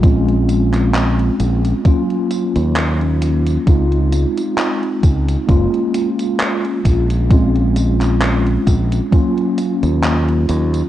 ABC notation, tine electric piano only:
X:1
M:4/4
L:1/8
Q:"Swing 16ths" 1/4=66
K:Bbm
V:1 name="Tine electric piano"
[A,CDF]4 [G,B,DF]4 | [A,CEF]4 [A,B,DF]4 | [A,CDF]4 [G,B,DF]4 |]